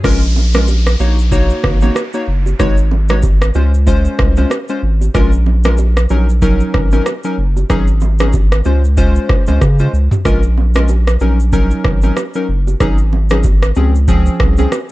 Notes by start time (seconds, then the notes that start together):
0.04 A#1 G#3 C#4 F4 A#4, kick, cross-stick, downlifter, low conga, shaker
0.22 shaker
0.36 low bongo
0.53 G#3 C#4 F4 A#4, cross-stick, low bongo, shaker
0.67 high bongo, shaker
0.87 cross-stick, shaker
0.99 A#1 A#3 D#4 F#4 C#5, high bongo, shaker
1.19 shaker
1.31 A#3 D#4 F#4 C#5, kick, low conga, shaker
1.50 shaker
1.63 G#1, kick, cross-stick, low conga
1.81 A#3 D#4 F#4 C#5, low bongo, shaker
1.95 cross-stick, high bongo, shaker
2.13 A#3 D#4 F#4 C#5, shaker
2.28 F#1
2.46 high bongo, shaker
2.59 G#1 G#3 D#4 F#4 C#5, kick, cross-stick, low conga, shaker
2.77 shaker
2.91 low bongo
3.09 G#3 D#4 F#4 C#5, cross-stick, low bongo, shaker
3.23 kick, high bongo, shaker
3.42 cross-stick, shaker
3.54 C#2 G#3 C#4 F4 C5, high bongo, shaker
3.74 shaker
3.86 G#3 C#4 F4 C5, kick, low conga, shaker
4.05 shaker
4.19 C2, kick, cross-stick, low conga
4.36 G#3 C#4 F4 C5, low bongo, shaker
4.50 cross-stick, high bongo, shaker
4.68 G#3 C#4 F4 C5, shaker
4.83 G#1
5.01 high bongo, shaker
5.14 A#1 G#3 C#4 F4 A#4, kick, cross-stick, low conga, shaker
5.32 shaker
5.46 low bongo
5.64 G#3 C#4 F4 A#4, cross-stick, low bongo, shaker
5.78 high bongo, shaker
5.97 cross-stick, shaker
6.09 A#1 F#3 C#4 D#4 A#4, high bongo, shaker
6.29 shaker
6.42 F#3 C#4 D#4 A#4, kick, low conga, shaker
6.60 shaker
6.74 G#1, kick, cross-stick, low conga
6.92 F#3 C#4 D#4 A#4, low bongo, shaker
7.06 cross-stick, high bongo, shaker
7.24 F#3 C#4 D#4 A#4, shaker
7.38 F#1
7.57 high bongo, shaker
7.70 G#1 F#3 C#4 D#4 G#4, kick, cross-stick, low conga, shaker
7.87 shaker
8.01 low bongo, shaker
8.19 F#3 C#4 D#4 G#4, cross-stick, low bongo, shaker
8.33 kick, high bongo, shaker
8.52 cross-stick, shaker
8.65 C#2 G#3 C#4 F4 C5, high bongo, shaker
8.85 shaker
8.97 G#3 C#4 F4 C5, kick, low conga, shaker
9.16 shaker
9.29 kick, cross-stick, low conga
9.47 C#2 G#3 C#4 F4 C5, low bongo, shaker
9.61 C#3, kick, cross-stick, high bongo, shaker
9.79 G#3 C#4 F4 C5, shaker
9.93 C#2, shaker
10.11 mid tom, high bongo, shaker
10.25 A#1 G#3 C#4 F4 A#4, kick, cross-stick, low conga, shaker
10.43 shaker
10.58 low bongo
10.74 G#3 C#4 F4 A#4, cross-stick, low bongo, shaker
10.88 high bongo, shaker
11.07 cross-stick, shaker
11.20 A#1 F#3 C#4 D#4 A#4, high bongo, shaker
11.40 shaker
11.52 F#3 C#4 D#4 A#4, kick, low conga, shaker
11.71 shaker
11.84 G#1, kick, cross-stick, low conga
12.02 F#3 C#4 D#4 A#4, low bongo, shaker
12.17 cross-stick, high bongo, shaker
12.34 F#3 C#4 D#4 A#4, shaker
12.49 F#1
12.67 high bongo, shaker
12.80 G#1 F#3 C#4 D#4 G#4, kick, cross-stick, low conga, shaker
12.98 shaker
13.13 low bongo
13.30 F#3 C#4 D#4 G#4, cross-stick, low bongo, shaker
13.44 kick, high bongo, shaker
13.63 cross-stick, shaker
13.75 C#2 F3 C4 C#4 G#4, high bongo, shaker
13.95 shaker
14.08 F3 C4 C#4 G#4, kick, low conga, shaker
14.26 shaker
14.40 C2, kick, cross-stick, low conga
14.57 F3 C4 C#4 G#4, low bongo, shaker
14.72 cross-stick, high bongo, shaker